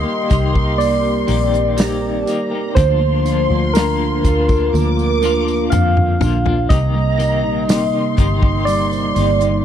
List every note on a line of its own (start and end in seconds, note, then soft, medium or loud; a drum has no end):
0.00 0.28 D#3 medium
0.00 2.74 G3 medium
0.00 0.30 A#3 medium
0.00 0.77 A#3 medium
0.00 0.79 A#3 medium
0.00 0.31 D#4 medium
0.00 2.73 D#4 medium
0.00 0.28 G4 medium
0.00 0.31 G4 medium
0.00 2.74 G4 medium
0.00 0.04 A#4 medium
0.00 0.52 A#4 medium
0.00 0.78 D#5 loud
0.00 1.78 C6 loud
0.28 1.25 C2 medium
0.28 0.55 D#3 medium
0.28 0.55 A#3 medium
0.28 0.54 D#4 medium
0.28 1.26 G4 medium
0.28 kick medium
0.28 hi-hat pedal medium
0.28 open hi-hat medium
0.28 tambourine soft
0.33 0.53 G4 medium
0.53 1.28 D#4 medium
0.53 1.29 G4 medium
0.53 1.01 A#4 medium
0.53 kick medium
0.78 2.72 A#3 medium
0.78 2.76 C4 medium
0.78 2.76 D5 loud
0.78 hi-hat pedal medium
0.78 open hi-hat medium
0.78 tambourine soft
1.02 1.51 A#4 medium
1.02 open hi-hat medium
1.27 2.23 A#1 medium
1.27 1.76 D#3 medium
1.27 1.77 A#3 medium
1.27 1.77 D#4 medium
1.27 1.76 G4 medium
1.27 1.78 G4 medium
1.27 hi-hat pedal medium
1.27 open hi-hat medium
1.27 tambourine medium
1.52 2.01 A#4 soft
1.52 hi-hat pedal medium
1.52 tambourine soft
1.77 2.25 D#3 medium
1.77 2.26 A#3 medium
1.77 2.27 D#4 medium
1.77 2.25 G4 medium
1.77 2.28 G4 medium
1.77 2.20 A#5 medium
1.77 snare loud
1.77 hi-hat pedal medium
1.77 open hi-hat medium
1.77 tambourine medium
2.02 2.50 A#4 soft
2.21 2.28 A5 medium
2.26 2.51 D#3 medium
2.26 2.52 A#3 medium
2.26 2.52 D#4 medium
2.26 2.75 G4 medium
2.26 2.50 G4 medium
2.26 2.77 A#5 medium
2.26 hi-hat pedal medium
2.26 open hi-hat medium
2.26 tambourine medium
2.51 2.76 A#3 soft
2.51 2.77 D#4 medium
2.51 2.76 G4 medium
2.51 2.76 A#4 medium
2.75 3.47 D2 loud
2.75 6.65 D3 medium
2.75 3.01 D3 medium
2.75 6.67 D3 medium
2.75 3.01 F3 medium
2.75 6.67 F3 medium
2.75 3.02 A#3 loud
2.75 9.65 A#3 medium
2.75 3.01 D4 loud
2.75 6.67 F4 medium
2.75 3.00 F4 medium
2.75 3.75 C5 loud
2.75 4.73 C6 loud
2.75 kick loud
2.75 hi-hat pedal medium
2.75 open hi-hat medium
2.75 tambourine soft
3.00 4.72 A#3 medium
3.00 3.27 D4 soft
3.00 3.26 F4 medium
3.04 3.25 A#3 soft
3.25 3.75 F3 medium
3.25 3.75 A#3 medium
3.25 3.73 D4 soft
3.25 3.75 D4 medium
3.25 hi-hat pedal medium
3.25 open hi-hat medium
3.25 tambourine soft
3.29 3.76 F4 medium
3.50 4.20 D2 loud
3.50 3.98 F4 medium
3.74 4.24 D3 medium
3.74 4.23 F3 medium
3.74 4.24 A#3 medium
3.74 4.23 D4 medium
3.74 4.25 D4 medium
3.74 4.26 F4 medium
3.74 5.72 A#4 loud
3.74 snare loud
3.74 hi-hat pedal medium
3.74 open hi-hat loud
3.74 tambourine medium
3.99 4.47 F4 medium
4.24 4.70 D2 medium
4.24 4.49 F3 medium
4.24 4.49 A#3 medium
4.24 5.20 D4 soft
4.24 4.49 D4 medium
4.24 4.47 F4 medium
4.24 kick medium
4.24 hi-hat pedal medium
4.24 open hi-hat medium
4.24 tambourine soft
4.48 5.22 A#3 soft
4.48 5.23 D4 medium
4.48 4.96 F4 medium
4.48 5.22 F4 medium
4.48 kick medium
4.48 tambourine soft
4.72 5.68 D2 loud
4.72 6.66 A#3 medium
4.72 6.20 D6 loud
4.72 high tom medium
4.72 tambourine soft
4.97 5.45 F4 soft
4.97 tambourine soft
5.22 5.71 F3 medium
5.22 5.71 A#3 medium
5.22 5.70 D4 medium
5.22 5.72 D4 medium
5.22 5.72 F4 medium
5.22 tambourine medium
5.46 5.94 F4 soft
5.46 tambourine soft
5.70 6.18 F2 medium
5.70 6.21 D3 medium
5.70 6.19 F3 medium
5.70 6.20 A#3 medium
5.70 6.19 D4 medium
5.70 6.21 D4 medium
5.70 6.22 F4 medium
5.70 6.69 F5 loud
5.70 mid tom loud
5.70 tambourine medium
5.96 6.44 F4 soft
5.96 mid tom medium
6.20 6.67 A#1 medium
6.20 6.45 F3 medium
6.20 6.46 A#3 medium
6.20 6.68 D4 medium
6.20 6.46 D4 medium
6.20 6.44 F4 medium
6.20 floor tom loud
6.20 tambourine soft
6.45 6.69 A#3 soft
6.45 6.70 D4 soft
6.45 6.70 F4 medium
6.45 6.69 F4 soft
6.45 floor tom medium
6.69 7.44 C2 medium
6.69 6.94 C3 medium
6.69 9.65 C3 medium
6.69 6.95 D#3 medium
6.69 9.65 G3 medium
6.69 6.95 A#3 medium
6.69 6.94 D#4 medium
6.69 9.65 D#4 medium
6.69 6.92 G4 medium
6.69 8.67 D#5 loud
6.69 7.64 A#5 loud
6.69 kick loud
6.69 hi-hat pedal medium
6.69 open hi-hat medium
6.69 tambourine medium
6.94 8.67 G3 medium
6.94 7.18 A#3 soft
6.94 7.19 D#4 soft
6.94 7.19 G4 medium
7.18 7.67 D#3 medium
7.18 7.68 A#3 medium
7.18 7.68 D#4 medium
7.18 7.69 G4 medium
7.18 hi-hat pedal medium
7.18 open hi-hat medium
7.18 tambourine medium
7.44 7.90 A#1 medium
7.44 7.93 D#4 medium
7.68 8.17 C3 medium
7.68 8.15 D#3 medium
7.68 9.16 A#3 medium
7.68 8.17 A#3 medium
7.68 8.18 D#4 medium
7.68 8.18 G4 medium
7.68 9.65 C6 loud
7.68 snare loud
7.68 hi-hat pedal medium
7.68 open hi-hat loud
7.68 tambourine medium
7.94 8.42 D#4 soft
8.17 9.12 G1 medium
8.17 8.42 D#3 medium
8.17 8.43 A#3 medium
8.17 8.42 D#4 medium
8.17 9.65 G4 soft
8.17 8.40 G4 medium
8.17 kick medium
8.17 hi-hat pedal medium
8.17 open hi-hat medium
8.17 tambourine soft
8.41 9.15 A#3 soft
8.41 9.16 D#4 soft
8.41 9.41 D#4 soft
8.41 9.16 G4 medium
8.41 kick medium
8.65 9.65 G3 medium
8.65 9.65 D5 loud
8.65 hi-hat pedal medium
8.65 open hi-hat loud
8.65 tambourine medium
8.91 9.65 C5 soft
8.91 open hi-hat medium
8.91 tambourine soft
9.15 9.65 G1 medium
9.15 9.64 D#3 medium
9.15 9.65 A#3 medium
9.15 9.65 D#4 medium
9.15 9.65 G4 medium
9.15 hi-hat pedal medium
9.15 open hi-hat medium
9.15 tambourine medium
9.40 9.65 D#4 soft
9.40 hi-hat pedal medium
9.40 tambourine soft